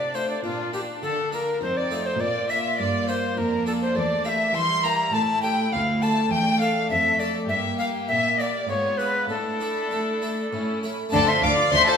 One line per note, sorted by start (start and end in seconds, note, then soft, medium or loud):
0.00 0.40 C3 medium
0.00 0.40 C3 soft
0.00 0.42 D4 soft
0.00 1.61 D4 soft
0.00 0.14 D5 soft
0.00 0.16 D5 medium
0.14 0.35 A3 soft
0.14 0.36 D4 soft
0.14 0.36 F4 soft
0.14 0.29 C5 soft
0.14 0.29 C5 medium
0.30 0.44 D5 soft
0.30 0.43 D5 medium
0.43 0.99 A#2 medium
0.43 0.99 A#2 soft
0.43 1.59 D4 soft
0.43 0.73 F4 medium
0.73 1.16 A#3 soft
0.73 1.16 D4 soft
0.73 1.16 F4 soft
0.73 0.81 G4 medium
1.01 1.58 D3 medium
1.01 1.58 D3 soft
1.01 1.31 A4 medium
1.01 1.32 A4 medium
1.31 1.54 A#3 soft
1.31 1.54 D4 soft
1.31 1.54 F4 soft
1.31 1.61 A#4 soft
1.31 1.62 A#4 medium
1.61 2.16 F2 soft
1.61 2.16 F2 medium
1.61 2.19 C4 soft
1.61 2.19 D#4 soft
1.61 1.76 C5 medium
1.61 1.79 C5 medium
1.75 2.04 D5 medium
1.75 2.08 D5 medium
1.91 2.12 A3 soft
1.91 2.12 D#4 soft
1.91 2.13 F4 soft
2.05 2.20 C5 soft
2.05 2.22 C5 medium
2.19 2.75 A#2 soft
2.19 2.75 A#2 medium
2.19 2.78 A#3 soft
2.19 3.38 F4 medium
2.19 2.48 D5 medium
2.19 2.52 D5 medium
2.48 2.91 A#3 soft
2.48 2.92 D4 soft
2.48 2.92 F4 soft
2.48 2.78 E5 medium
2.48 2.80 E5 medium
2.78 3.33 G2 soft
2.78 3.33 G2 medium
2.78 3.37 A#3 medium
2.78 3.07 D5 medium
2.78 3.08 D5 medium
3.07 3.50 A#3 soft
3.07 3.51 D4 soft
3.07 3.51 F4 soft
3.07 3.37 C5 medium
3.07 3.39 C5 medium
3.37 3.92 F2 soft
3.37 3.92 F2 medium
3.37 3.95 A#3 medium
3.37 4.54 D4 medium
3.37 3.66 A#4 medium
3.66 3.87 A#3 soft
3.66 3.88 D4 soft
3.66 3.88 F4 soft
3.66 3.73 A4 medium
3.66 3.81 A4 medium
3.82 3.96 C5 medium
3.82 3.97 C5 medium
3.95 4.50 E2 soft
3.95 4.50 E2 medium
3.95 4.55 A3 soft
3.95 4.27 D5 medium
3.95 4.25 D5 medium
4.24 4.67 A#3 soft
4.24 4.67 E4 soft
4.24 4.67 G4 soft
4.24 4.55 E5 medium
4.24 4.31 F5 medium
4.30 4.56 E5 medium
4.54 5.09 E3 medium
4.54 5.12 G3 medium
4.54 5.13 E4 medium
4.54 4.84 C6 medium
4.54 4.85 C6 medium
4.84 5.05 A#3 soft
4.84 5.05 E4 soft
4.84 5.06 G4 soft
4.84 5.14 A#5 medium
4.84 5.13 A#5 medium
5.13 5.68 A2 medium
5.13 5.68 A2 soft
5.13 5.71 A3 medium
5.13 6.29 E4 medium
5.13 5.21 A5 medium
5.13 5.42 A5 medium
5.42 5.64 A3 soft
5.42 5.64 C#4 soft
5.42 5.65 G4 soft
5.42 5.74 G5 medium
5.42 5.72 G5 medium
5.72 6.27 D2 medium
5.72 6.88 A3 medium
5.72 5.80 F5 medium
5.72 6.04 F5 medium
6.01 6.23 A3 soft
6.01 6.44 D4 soft
6.01 6.45 A4 soft
6.01 6.30 A5 medium
6.01 6.33 A5 medium
6.31 6.86 E2 medium
6.31 6.89 D4 soft
6.31 6.60 G5 medium
6.60 6.82 A3 soft
6.60 6.82 D4 soft
6.60 6.82 A4 soft
6.60 6.89 F5 medium
6.89 7.45 F2 medium
6.89 7.48 A3 medium
6.89 7.49 A4 medium
6.89 7.18 E5 medium
6.89 7.21 E5 medium
7.19 7.41 A3 soft
7.19 7.41 D4 soft
7.19 7.41 A4 soft
7.19 7.34 D5 medium
7.48 8.05 G2 medium
7.48 8.05 G2 soft
7.48 8.68 A#3 medium
7.48 8.68 G4 soft
7.48 7.76 E5 medium
7.48 7.56 E5 medium
7.78 8.22 A#3 soft
7.78 8.22 A#4 soft
7.78 7.85 F5 medium
7.78 7.87 F5 medium
8.08 8.64 A#2 medium
8.08 8.64 A#2 soft
8.08 8.40 E5 medium
8.08 8.38 E5 medium
8.38 8.61 A#3 soft
8.38 8.61 A#4 soft
8.38 8.67 D5 medium
8.38 8.68 D5 medium
8.38 8.43 D#5 medium
8.68 9.25 G#2 medium
8.68 9.25 G#2 soft
8.68 9.29 B3 medium
8.68 9.28 F4 soft
8.68 8.98 C#5 medium
8.68 8.99 C#5 medium
8.98 9.21 D4 soft
8.98 9.21 G#4 soft
8.98 9.29 B4 medium
9.28 9.86 A2 medium
9.28 9.87 A2 soft
9.28 10.52 D4 soft
9.28 10.51 E4 medium
9.28 10.82 A4 medium
9.28 10.79 A4 medium
9.60 9.90 A3 soft
9.60 10.05 D4 soft
9.60 10.05 E4 soft
9.90 10.48 A3 medium
9.90 10.21 A3 soft
10.22 10.44 A3 soft
10.22 10.44 D4 soft
10.22 10.44 E4 soft
10.52 11.09 A2 medium
10.52 11.09 A2 soft
10.52 10.92 C#4 soft
10.52 10.91 E4 medium
10.83 11.05 A3 soft
10.83 11.05 C#4 soft
10.83 11.05 E4 soft
11.09 11.21 D2 medium
11.09 11.20 D3 medium
11.09 11.97 A3 medium
11.09 11.97 D4 medium
11.09 11.27 D4 medium
11.09 11.97 F4 medium
11.09 11.26 A5 loud
11.13 11.40 D3 medium
11.13 11.27 A4 medium
11.13 11.30 D5 medium
11.27 11.43 F4 medium
11.27 11.43 C5 medium
11.27 11.45 E5 medium
11.27 11.42 C6 medium
11.42 11.50 D2 medium
11.42 11.51 D3 medium
11.42 11.70 D3 medium
11.42 11.58 D4 medium
11.42 11.72 D5 medium
11.42 11.73 F5 medium
11.42 11.51 D6 medium
11.58 11.73 F4 medium
11.72 11.80 D2 medium
11.72 11.81 D3 medium
11.72 11.97 D3 medium
11.72 11.86 D4 medium
11.72 11.88 C5 loud
11.72 11.90 E5 medium
11.72 11.87 C6 loud
11.86 11.97 F4 medium
11.86 11.97 A4 medium
11.86 11.97 C5 medium
11.86 11.97 A5 medium